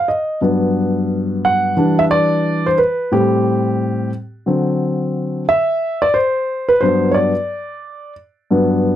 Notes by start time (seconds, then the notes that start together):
0.08 D#5
0.41 G2 F#3 B3
1.45 F#5
1.77 E3 G3 D4
1.99 E5
2.11 D5
2.66 C5
2.78 B4
3.12 A2 G3 C4 G4
4.46 D3 F#3 C4
5.49 E5
6.02 D5
6.14 C5
6.69 B4
6.81 G2 F#3 B3 C5
7.11 C#5 D5
8.51 G2 F#3 B3